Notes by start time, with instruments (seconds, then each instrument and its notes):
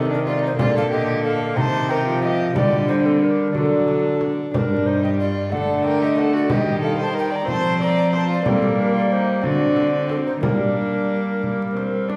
Already playing: lute C3 C4 D#4, cello C3, viola D#3, recorder A4
0.10 violin D4, recorder A#4
0.26 violin F4, recorder D5, frame drum
0.42 violin D#4, recorder C5
0.55 lute A#2 D3 A#3 F4, viola D3, violin F4
0.59 cello A#2, recorder D5, frame drum
0.74 violin A4, recorder F5
0.91 violin G4, recorder D#5
1.24 violin A4, recorder F5
1.54 cello C3, lute C3 C4 D#4, viola D#3, violin C5, recorder A#5, frame drum
1.61 recorder A5
1.89 violin A#4, recorder G5, frame drum
2.06 viola F3
2.23 violin G4, recorder D#5, frame drum
2.53 cello D3, lute D3 G3 D4, viola G3, violin G4, recorder D5, frame drum
2.88 violin D#4, recorder C5
3.05 violin C4, recorder A4
3.21 violin D4, recorder A#4
3.52 lute D3 D4, cello D3, viola F#3, violin D4, recorder A4, frame drum
3.88 frame drum
4.21 frame drum
4.51 cello G2, lute G2 D4, viola G3, violin D4, recorder C5, frame drum
4.58 recorder A#4
4.86 violin D#4, recorder C5
5.04 violin G4, recorder D#5
5.20 violin F4, recorder D5
5.49 cello D3, lute D3 A3 D4, viola A3, violin A4, recorder F#5, frame drum
5.84 violin A#4, recorder G5, frame drum
6.02 violin G4, recorder D#5
6.17 violin A4, recorder F#5, frame drum
6.33 violin F#4, recorder D5
6.48 cello D#3, lute D#3 D#4 G4, viola G3, violin G4, recorder D#5, frame drum
6.81 violin A4, recorder F5
6.98 violin C5
7.03 recorder A5
7.14 violin A#4
7.19 recorder G5
7.31 violin D5
7.36 recorder A#5
7.44 cello F3, lute F3 A3 C4 F4, viola C4, violin C5, frame drum
7.51 recorder A5
7.79 violin D5, recorder A#5, frame drum
8.13 violin C5, recorder A5, frame drum
8.28 violin F4
8.33 recorder D5
8.42 lute G3 A#3 D5, cello G3, viola A#3, violin C4, frame drum
8.49 recorder A4
8.78 violin D4, recorder A#4
8.95 violin F4, recorder D5
9.11 violin D#4, recorder C5
9.41 cello D3, lute D3 C4 D4, viola C4, violin F#4, recorder D5, frame drum
9.76 frame drum
10.09 violin C4, recorder A4, frame drum
10.27 violin D#4, recorder C5
10.40 cello G3, lute G3 A#3 D4, viola A#3, violin D4, recorder A#4, frame drum
11.43 viola A#3, frame drum
11.75 viola C4, frame drum
12.09 viola D4, frame drum